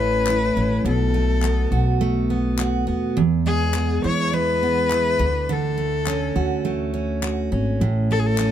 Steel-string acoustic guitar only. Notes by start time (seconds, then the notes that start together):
Already playing: A2 A3 E4
0.00 C#4
0.29 E4
0.57 C#4
0.86 B2
1.14 A3
1.44 B3
1.72 F#4
2.01 A3
2.30 B3
2.59 F#4
2.87 B3
3.17 E2
3.46 G#3
3.76 B3
4.04 E4
4.33 G#3
4.63 B3
4.92 E4
5.19 D3
5.49 D3
5.78 A3
6.06 C#4
6.36 F#4
6.65 A3
6.94 C#4
7.22 F#4
7.52 C#4
7.81 A2
8.11 A3
8.40 C#4